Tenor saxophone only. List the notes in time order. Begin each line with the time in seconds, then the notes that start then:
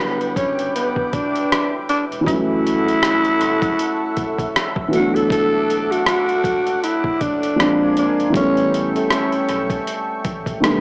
0.00 B3
0.37 C#4
0.76 B3
1.13 D4
1.89 D4
2.27 E4
4.93 F#4
5.15 A4
5.32 A4
5.91 F#4
6.08 F#4
6.84 E4
7.22 D4
7.98 D4
8.37 C#4
8.96 A3
9.12 C#4